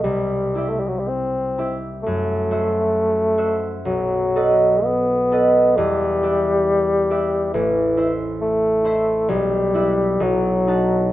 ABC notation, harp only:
X:1
M:4/4
L:1/8
Q:1/4=66
K:Em
V:1 name="Harp"
C,, [EGe]2 [EGe] F,, [Fce]2 [Fce] | B,,, [AB^d]2 [ABd] E,, [GBe]2 [GBe] | A,,, [Ece]2 [Ece] B,,, [EBe] B,,, [^DBa] |]